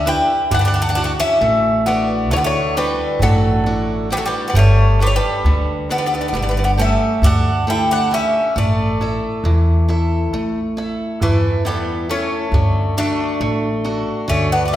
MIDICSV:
0, 0, Header, 1, 6, 480
1, 0, Start_track
1, 0, Key_signature, 2, "major"
1, 0, Tempo, 896861
1, 277, Time_signature, 9, 3, 24, 8
1, 3636, Tempo, 881057
1, 7976, End_track
2, 0, Start_track
2, 0, Title_t, "Bouzouki"
2, 0, Program_c, 0, 25
2, 45, Note_on_c, 0, 79, 97
2, 289, Note_off_c, 0, 79, 0
2, 291, Note_on_c, 0, 78, 99
2, 321, Note_off_c, 0, 78, 0
2, 327, Note_on_c, 0, 78, 76
2, 355, Note_off_c, 0, 78, 0
2, 362, Note_on_c, 0, 78, 84
2, 397, Note_off_c, 0, 78, 0
2, 403, Note_on_c, 0, 78, 67
2, 433, Note_off_c, 0, 78, 0
2, 440, Note_on_c, 0, 78, 81
2, 475, Note_off_c, 0, 78, 0
2, 481, Note_on_c, 0, 78, 78
2, 516, Note_off_c, 0, 78, 0
2, 522, Note_on_c, 0, 78, 80
2, 558, Note_off_c, 0, 78, 0
2, 564, Note_on_c, 0, 78, 72
2, 598, Note_off_c, 0, 78, 0
2, 643, Note_on_c, 0, 76, 102
2, 981, Note_off_c, 0, 76, 0
2, 1005, Note_on_c, 0, 74, 90
2, 1227, Note_off_c, 0, 74, 0
2, 1248, Note_on_c, 0, 73, 91
2, 1271, Note_off_c, 0, 73, 0
2, 1273, Note_on_c, 0, 74, 79
2, 1312, Note_off_c, 0, 74, 0
2, 1319, Note_on_c, 0, 73, 95
2, 1472, Note_off_c, 0, 73, 0
2, 1486, Note_on_c, 0, 71, 96
2, 1727, Note_off_c, 0, 71, 0
2, 1729, Note_on_c, 0, 69, 93
2, 2183, Note_off_c, 0, 69, 0
2, 2206, Note_on_c, 0, 71, 89
2, 2235, Note_off_c, 0, 71, 0
2, 2237, Note_on_c, 0, 69, 75
2, 2273, Note_off_c, 0, 69, 0
2, 2287, Note_on_c, 0, 71, 83
2, 2407, Note_on_c, 0, 74, 72
2, 2442, Note_off_c, 0, 74, 0
2, 2452, Note_off_c, 0, 71, 0
2, 2455, Note_on_c, 0, 73, 89
2, 2670, Note_off_c, 0, 73, 0
2, 2689, Note_on_c, 0, 71, 86
2, 2714, Note_on_c, 0, 73, 77
2, 2718, Note_off_c, 0, 71, 0
2, 2751, Note_off_c, 0, 73, 0
2, 2761, Note_on_c, 0, 71, 91
2, 3139, Note_off_c, 0, 71, 0
2, 3162, Note_on_c, 0, 74, 93
2, 3196, Note_off_c, 0, 74, 0
2, 3204, Note_on_c, 0, 74, 66
2, 3236, Note_off_c, 0, 74, 0
2, 3245, Note_on_c, 0, 74, 72
2, 3276, Note_off_c, 0, 74, 0
2, 3285, Note_on_c, 0, 74, 60
2, 3315, Note_off_c, 0, 74, 0
2, 3322, Note_on_c, 0, 74, 65
2, 3353, Note_off_c, 0, 74, 0
2, 3365, Note_on_c, 0, 74, 58
2, 3394, Note_off_c, 0, 74, 0
2, 3406, Note_on_c, 0, 74, 66
2, 3434, Note_off_c, 0, 74, 0
2, 3444, Note_on_c, 0, 74, 59
2, 3472, Note_off_c, 0, 74, 0
2, 3484, Note_on_c, 0, 74, 70
2, 3512, Note_off_c, 0, 74, 0
2, 3525, Note_on_c, 0, 74, 62
2, 3552, Note_off_c, 0, 74, 0
2, 3558, Note_on_c, 0, 74, 70
2, 3587, Note_off_c, 0, 74, 0
2, 3647, Note_on_c, 0, 76, 98
2, 3865, Note_off_c, 0, 76, 0
2, 3891, Note_on_c, 0, 78, 92
2, 4108, Note_off_c, 0, 78, 0
2, 4129, Note_on_c, 0, 79, 88
2, 4235, Note_off_c, 0, 79, 0
2, 4252, Note_on_c, 0, 78, 93
2, 4369, Note_off_c, 0, 78, 0
2, 4371, Note_on_c, 0, 76, 85
2, 4608, Note_off_c, 0, 76, 0
2, 4610, Note_on_c, 0, 74, 73
2, 6053, Note_on_c, 0, 57, 74
2, 6271, Note_off_c, 0, 57, 0
2, 6297, Note_on_c, 0, 59, 70
2, 6506, Note_off_c, 0, 74, 0
2, 6528, Note_off_c, 0, 59, 0
2, 6531, Note_on_c, 0, 61, 85
2, 6983, Note_off_c, 0, 61, 0
2, 7008, Note_on_c, 0, 62, 86
2, 7720, Note_off_c, 0, 62, 0
2, 7722, Note_on_c, 0, 61, 79
2, 7831, Note_off_c, 0, 61, 0
2, 7847, Note_on_c, 0, 62, 80
2, 7916, Note_off_c, 0, 62, 0
2, 7918, Note_on_c, 0, 66, 62
2, 7955, Note_off_c, 0, 66, 0
2, 7976, End_track
3, 0, Start_track
3, 0, Title_t, "Steel-string acoustic guitar"
3, 0, Program_c, 1, 25
3, 31, Note_on_c, 1, 62, 50
3, 35, Note_on_c, 1, 67, 35
3, 36, Note_on_c, 1, 71, 55
3, 227, Note_off_c, 1, 62, 0
3, 228, Note_off_c, 1, 67, 0
3, 229, Note_off_c, 1, 71, 0
3, 278, Note_on_c, 1, 50, 71
3, 521, Note_on_c, 1, 66, 60
3, 522, Note_on_c, 1, 64, 40
3, 745, Note_off_c, 1, 50, 0
3, 757, Note_on_c, 1, 57, 70
3, 905, Note_off_c, 1, 64, 0
3, 906, Note_off_c, 1, 66, 0
3, 998, Note_on_c, 1, 62, 57
3, 1001, Note_on_c, 1, 66, 58
3, 1003, Note_on_c, 1, 64, 42
3, 1225, Note_off_c, 1, 57, 0
3, 1245, Note_on_c, 1, 50, 69
3, 1384, Note_off_c, 1, 62, 0
3, 1386, Note_off_c, 1, 64, 0
3, 1386, Note_off_c, 1, 66, 0
3, 1481, Note_on_c, 1, 62, 52
3, 1483, Note_on_c, 1, 64, 45
3, 1487, Note_on_c, 1, 66, 56
3, 1709, Note_off_c, 1, 50, 0
3, 1723, Note_on_c, 1, 57, 69
3, 1865, Note_off_c, 1, 62, 0
3, 1866, Note_off_c, 1, 64, 0
3, 1869, Note_off_c, 1, 66, 0
3, 1960, Note_on_c, 1, 62, 49
3, 1962, Note_on_c, 1, 66, 56
3, 1965, Note_on_c, 1, 64, 38
3, 2187, Note_off_c, 1, 57, 0
3, 2190, Note_off_c, 1, 62, 0
3, 2193, Note_off_c, 1, 64, 0
3, 2197, Note_off_c, 1, 66, 0
3, 2197, Note_on_c, 1, 62, 48
3, 2199, Note_on_c, 1, 64, 44
3, 2203, Note_on_c, 1, 66, 52
3, 2390, Note_off_c, 1, 62, 0
3, 2391, Note_off_c, 1, 64, 0
3, 2394, Note_off_c, 1, 66, 0
3, 2436, Note_on_c, 1, 55, 68
3, 2678, Note_on_c, 1, 62, 46
3, 2682, Note_on_c, 1, 67, 39
3, 2683, Note_on_c, 1, 69, 56
3, 2901, Note_off_c, 1, 55, 0
3, 2921, Note_on_c, 1, 50, 66
3, 3061, Note_off_c, 1, 62, 0
3, 3062, Note_off_c, 1, 67, 0
3, 3063, Note_off_c, 1, 69, 0
3, 3160, Note_on_c, 1, 62, 54
3, 3164, Note_on_c, 1, 67, 42
3, 3166, Note_on_c, 1, 69, 65
3, 3382, Note_off_c, 1, 50, 0
3, 3391, Note_on_c, 1, 55, 65
3, 3540, Note_off_c, 1, 62, 0
3, 3541, Note_off_c, 1, 67, 0
3, 3543, Note_off_c, 1, 69, 0
3, 3626, Note_on_c, 1, 57, 50
3, 3630, Note_on_c, 1, 69, 56
3, 3631, Note_on_c, 1, 67, 39
3, 3858, Note_off_c, 1, 55, 0
3, 3874, Note_on_c, 1, 50, 64
3, 4016, Note_off_c, 1, 57, 0
3, 4018, Note_off_c, 1, 67, 0
3, 4018, Note_off_c, 1, 69, 0
3, 4113, Note_on_c, 1, 57, 53
3, 4118, Note_on_c, 1, 67, 42
3, 4119, Note_on_c, 1, 69, 54
3, 4343, Note_off_c, 1, 50, 0
3, 4353, Note_off_c, 1, 67, 0
3, 4353, Note_off_c, 1, 69, 0
3, 4354, Note_on_c, 1, 50, 49
3, 4358, Note_on_c, 1, 67, 44
3, 4362, Note_on_c, 1, 69, 46
3, 4501, Note_off_c, 1, 57, 0
3, 4549, Note_off_c, 1, 50, 0
3, 4552, Note_off_c, 1, 67, 0
3, 4552, Note_off_c, 1, 69, 0
3, 4597, Note_on_c, 1, 57, 64
3, 4843, Note_on_c, 1, 64, 50
3, 4847, Note_on_c, 1, 69, 47
3, 4850, Note_on_c, 1, 76, 55
3, 5066, Note_off_c, 1, 57, 0
3, 5083, Note_on_c, 1, 52, 69
3, 5227, Note_off_c, 1, 64, 0
3, 5230, Note_off_c, 1, 69, 0
3, 5232, Note_off_c, 1, 76, 0
3, 5320, Note_on_c, 1, 64, 52
3, 5324, Note_on_c, 1, 69, 44
3, 5328, Note_on_c, 1, 76, 53
3, 5549, Note_off_c, 1, 52, 0
3, 5566, Note_on_c, 1, 57, 62
3, 5706, Note_off_c, 1, 64, 0
3, 5708, Note_off_c, 1, 69, 0
3, 5709, Note_off_c, 1, 76, 0
3, 5802, Note_on_c, 1, 64, 51
3, 5808, Note_on_c, 1, 76, 55
3, 5809, Note_on_c, 1, 69, 39
3, 6030, Note_off_c, 1, 57, 0
3, 6047, Note_on_c, 1, 52, 60
3, 6187, Note_off_c, 1, 64, 0
3, 6188, Note_off_c, 1, 69, 0
3, 6190, Note_off_c, 1, 76, 0
3, 6281, Note_on_c, 1, 64, 50
3, 6283, Note_on_c, 1, 69, 47
3, 6286, Note_on_c, 1, 76, 46
3, 6510, Note_off_c, 1, 52, 0
3, 6517, Note_off_c, 1, 64, 0
3, 6521, Note_off_c, 1, 69, 0
3, 6524, Note_on_c, 1, 64, 49
3, 6527, Note_on_c, 1, 69, 41
3, 6531, Note_on_c, 1, 73, 44
3, 6667, Note_off_c, 1, 76, 0
3, 6715, Note_off_c, 1, 64, 0
3, 6717, Note_off_c, 1, 69, 0
3, 6717, Note_off_c, 1, 73, 0
3, 6767, Note_on_c, 1, 50, 71
3, 7003, Note_on_c, 1, 62, 48
3, 7008, Note_on_c, 1, 66, 37
3, 7009, Note_on_c, 1, 69, 55
3, 7228, Note_off_c, 1, 50, 0
3, 7239, Note_on_c, 1, 57, 70
3, 7385, Note_off_c, 1, 62, 0
3, 7386, Note_off_c, 1, 66, 0
3, 7388, Note_off_c, 1, 69, 0
3, 7477, Note_on_c, 1, 62, 50
3, 7481, Note_on_c, 1, 66, 50
3, 7484, Note_on_c, 1, 69, 52
3, 7702, Note_off_c, 1, 57, 0
3, 7713, Note_on_c, 1, 50, 73
3, 7859, Note_off_c, 1, 62, 0
3, 7861, Note_off_c, 1, 69, 0
3, 7862, Note_off_c, 1, 66, 0
3, 7954, Note_on_c, 1, 66, 43
3, 7960, Note_on_c, 1, 69, 51
3, 7976, Note_off_c, 1, 50, 0
3, 7976, Note_off_c, 1, 66, 0
3, 7976, Note_off_c, 1, 69, 0
3, 7976, End_track
4, 0, Start_track
4, 0, Title_t, "Bouzouki"
4, 0, Program_c, 2, 25
4, 38, Note_on_c, 2, 64, 91
4, 262, Note_off_c, 2, 64, 0
4, 275, Note_on_c, 2, 62, 78
4, 310, Note_off_c, 2, 62, 0
4, 316, Note_on_c, 2, 62, 60
4, 341, Note_off_c, 2, 62, 0
4, 348, Note_on_c, 2, 62, 73
4, 388, Note_off_c, 2, 62, 0
4, 395, Note_on_c, 2, 62, 60
4, 432, Note_off_c, 2, 62, 0
4, 437, Note_on_c, 2, 62, 74
4, 469, Note_off_c, 2, 62, 0
4, 476, Note_on_c, 2, 62, 60
4, 503, Note_off_c, 2, 62, 0
4, 510, Note_on_c, 2, 62, 77
4, 548, Note_off_c, 2, 62, 0
4, 557, Note_on_c, 2, 62, 67
4, 591, Note_off_c, 2, 62, 0
4, 640, Note_on_c, 2, 61, 83
4, 980, Note_off_c, 2, 61, 0
4, 996, Note_on_c, 2, 59, 72
4, 1222, Note_off_c, 2, 59, 0
4, 1237, Note_on_c, 2, 57, 76
4, 1263, Note_off_c, 2, 57, 0
4, 1265, Note_on_c, 2, 59, 62
4, 1305, Note_off_c, 2, 59, 0
4, 1308, Note_on_c, 2, 57, 82
4, 1467, Note_off_c, 2, 57, 0
4, 1483, Note_on_c, 2, 55, 78
4, 1706, Note_off_c, 2, 55, 0
4, 1725, Note_on_c, 2, 54, 78
4, 2181, Note_off_c, 2, 54, 0
4, 2208, Note_on_c, 2, 55, 78
4, 2229, Note_off_c, 2, 55, 0
4, 2231, Note_on_c, 2, 54, 64
4, 2268, Note_off_c, 2, 54, 0
4, 2278, Note_on_c, 2, 55, 73
4, 2396, Note_on_c, 2, 59, 55
4, 2431, Note_off_c, 2, 55, 0
4, 2434, Note_off_c, 2, 59, 0
4, 2443, Note_on_c, 2, 57, 81
4, 2664, Note_off_c, 2, 57, 0
4, 2688, Note_on_c, 2, 55, 79
4, 2711, Note_on_c, 2, 57, 71
4, 2718, Note_off_c, 2, 55, 0
4, 2747, Note_off_c, 2, 57, 0
4, 2761, Note_on_c, 2, 55, 80
4, 3140, Note_off_c, 2, 55, 0
4, 3167, Note_on_c, 2, 59, 74
4, 3195, Note_off_c, 2, 59, 0
4, 3201, Note_on_c, 2, 59, 55
4, 3234, Note_off_c, 2, 59, 0
4, 3250, Note_on_c, 2, 59, 55
4, 3278, Note_off_c, 2, 59, 0
4, 3290, Note_on_c, 2, 59, 47
4, 3318, Note_off_c, 2, 59, 0
4, 3326, Note_on_c, 2, 59, 48
4, 3355, Note_off_c, 2, 59, 0
4, 3362, Note_on_c, 2, 59, 45
4, 3391, Note_off_c, 2, 59, 0
4, 3398, Note_on_c, 2, 59, 49
4, 3429, Note_off_c, 2, 59, 0
4, 3438, Note_on_c, 2, 59, 45
4, 3466, Note_off_c, 2, 59, 0
4, 3472, Note_on_c, 2, 59, 55
4, 3505, Note_off_c, 2, 59, 0
4, 3517, Note_on_c, 2, 59, 46
4, 3547, Note_off_c, 2, 59, 0
4, 3554, Note_on_c, 2, 59, 60
4, 3585, Note_off_c, 2, 59, 0
4, 3636, Note_on_c, 2, 61, 79
4, 3860, Note_off_c, 2, 61, 0
4, 3880, Note_on_c, 2, 62, 84
4, 4103, Note_off_c, 2, 62, 0
4, 4130, Note_on_c, 2, 64, 82
4, 4236, Note_off_c, 2, 64, 0
4, 4245, Note_on_c, 2, 62, 75
4, 4354, Note_off_c, 2, 62, 0
4, 4369, Note_on_c, 2, 61, 83
4, 4588, Note_off_c, 2, 61, 0
4, 4609, Note_on_c, 2, 57, 67
4, 6049, Note_on_c, 2, 52, 67
4, 6269, Note_off_c, 2, 52, 0
4, 6289, Note_on_c, 2, 55, 64
4, 6505, Note_off_c, 2, 57, 0
4, 6509, Note_off_c, 2, 55, 0
4, 6531, Note_on_c, 2, 57, 75
4, 6983, Note_off_c, 2, 57, 0
4, 7006, Note_on_c, 2, 57, 77
4, 7698, Note_off_c, 2, 57, 0
4, 7722, Note_on_c, 2, 57, 72
4, 7830, Note_off_c, 2, 57, 0
4, 7846, Note_on_c, 2, 59, 66
4, 7919, Note_off_c, 2, 59, 0
4, 7932, Note_on_c, 2, 62, 58
4, 7959, Note_off_c, 2, 62, 0
4, 7976, End_track
5, 0, Start_track
5, 0, Title_t, "Upright bass"
5, 0, Program_c, 3, 32
5, 0, Note_on_c, 3, 38, 91
5, 59, Note_off_c, 3, 38, 0
5, 275, Note_on_c, 3, 38, 97
5, 614, Note_off_c, 3, 38, 0
5, 755, Note_on_c, 3, 33, 86
5, 1241, Note_off_c, 3, 33, 0
5, 1241, Note_on_c, 3, 38, 91
5, 1577, Note_off_c, 3, 38, 0
5, 1714, Note_on_c, 3, 33, 94
5, 2220, Note_off_c, 3, 33, 0
5, 2433, Note_on_c, 3, 31, 95
5, 2770, Note_off_c, 3, 31, 0
5, 2913, Note_on_c, 3, 38, 93
5, 3386, Note_on_c, 3, 31, 89
5, 3395, Note_off_c, 3, 38, 0
5, 3724, Note_off_c, 3, 31, 0
5, 3866, Note_on_c, 3, 38, 90
5, 4377, Note_off_c, 3, 38, 0
5, 4597, Note_on_c, 3, 33, 95
5, 4935, Note_off_c, 3, 33, 0
5, 5076, Note_on_c, 3, 40, 88
5, 5565, Note_off_c, 3, 40, 0
5, 5565, Note_on_c, 3, 33, 87
5, 5900, Note_off_c, 3, 33, 0
5, 6045, Note_on_c, 3, 40, 91
5, 6547, Note_off_c, 3, 40, 0
5, 6753, Note_on_c, 3, 38, 95
5, 6924, Note_off_c, 3, 38, 0
5, 7238, Note_on_c, 3, 33, 81
5, 7573, Note_off_c, 3, 33, 0
5, 7717, Note_on_c, 3, 38, 95
5, 7976, Note_off_c, 3, 38, 0
5, 7976, End_track
6, 0, Start_track
6, 0, Title_t, "Darbuka"
6, 30, Note_on_c, 9, 63, 76
6, 83, Note_off_c, 9, 63, 0
6, 154, Note_on_c, 9, 63, 31
6, 208, Note_off_c, 9, 63, 0
6, 272, Note_on_c, 9, 64, 109
6, 325, Note_off_c, 9, 64, 0
6, 511, Note_on_c, 9, 63, 75
6, 564, Note_off_c, 9, 63, 0
6, 753, Note_on_c, 9, 63, 71
6, 807, Note_off_c, 9, 63, 0
6, 995, Note_on_c, 9, 63, 78
6, 1048, Note_off_c, 9, 63, 0
6, 1234, Note_on_c, 9, 63, 76
6, 1288, Note_off_c, 9, 63, 0
6, 1472, Note_on_c, 9, 63, 76
6, 1525, Note_off_c, 9, 63, 0
6, 1593, Note_on_c, 9, 63, 32
6, 1646, Note_off_c, 9, 63, 0
6, 1708, Note_on_c, 9, 64, 106
6, 1762, Note_off_c, 9, 64, 0
6, 1947, Note_on_c, 9, 63, 76
6, 2001, Note_off_c, 9, 63, 0
6, 2307, Note_on_c, 9, 63, 32
6, 2361, Note_off_c, 9, 63, 0
6, 2427, Note_on_c, 9, 64, 103
6, 2481, Note_off_c, 9, 64, 0
6, 2672, Note_on_c, 9, 63, 86
6, 2725, Note_off_c, 9, 63, 0
6, 2916, Note_on_c, 9, 63, 72
6, 2970, Note_off_c, 9, 63, 0
6, 3155, Note_on_c, 9, 63, 75
6, 3209, Note_off_c, 9, 63, 0
6, 3396, Note_on_c, 9, 63, 72
6, 3450, Note_off_c, 9, 63, 0
6, 3631, Note_on_c, 9, 63, 67
6, 3685, Note_off_c, 9, 63, 0
6, 3873, Note_on_c, 9, 64, 98
6, 3927, Note_off_c, 9, 64, 0
6, 4122, Note_on_c, 9, 63, 73
6, 4177, Note_off_c, 9, 63, 0
6, 4364, Note_on_c, 9, 63, 71
6, 4418, Note_off_c, 9, 63, 0
6, 4482, Note_on_c, 9, 63, 28
6, 4537, Note_off_c, 9, 63, 0
6, 4600, Note_on_c, 9, 64, 87
6, 4655, Note_off_c, 9, 64, 0
6, 4841, Note_on_c, 9, 63, 68
6, 4896, Note_off_c, 9, 63, 0
6, 4969, Note_on_c, 9, 63, 24
6, 5024, Note_off_c, 9, 63, 0
6, 5085, Note_on_c, 9, 63, 66
6, 5140, Note_off_c, 9, 63, 0
6, 5325, Note_on_c, 9, 63, 66
6, 5379, Note_off_c, 9, 63, 0
6, 5564, Note_on_c, 9, 63, 65
6, 5618, Note_off_c, 9, 63, 0
6, 5689, Note_on_c, 9, 63, 27
6, 5744, Note_off_c, 9, 63, 0
6, 5809, Note_on_c, 9, 63, 61
6, 5863, Note_off_c, 9, 63, 0
6, 5922, Note_on_c, 9, 63, 27
6, 5977, Note_off_c, 9, 63, 0
6, 6044, Note_on_c, 9, 64, 98
6, 6098, Note_off_c, 9, 64, 0
6, 6288, Note_on_c, 9, 63, 68
6, 6343, Note_off_c, 9, 63, 0
6, 6411, Note_on_c, 9, 63, 28
6, 6465, Note_off_c, 9, 63, 0
6, 6527, Note_on_c, 9, 63, 72
6, 6582, Note_off_c, 9, 63, 0
6, 6766, Note_on_c, 9, 64, 104
6, 6820, Note_off_c, 9, 64, 0
6, 7004, Note_on_c, 9, 63, 78
6, 7059, Note_off_c, 9, 63, 0
6, 7244, Note_on_c, 9, 63, 71
6, 7298, Note_off_c, 9, 63, 0
6, 7360, Note_on_c, 9, 63, 26
6, 7415, Note_off_c, 9, 63, 0
6, 7481, Note_on_c, 9, 63, 75
6, 7535, Note_off_c, 9, 63, 0
6, 7721, Note_on_c, 9, 63, 77
6, 7721, Note_on_c, 9, 64, 67
6, 7775, Note_off_c, 9, 63, 0
6, 7775, Note_off_c, 9, 64, 0
6, 7841, Note_on_c, 9, 63, 28
6, 7896, Note_off_c, 9, 63, 0
6, 7955, Note_on_c, 9, 63, 66
6, 7976, Note_off_c, 9, 63, 0
6, 7976, End_track
0, 0, End_of_file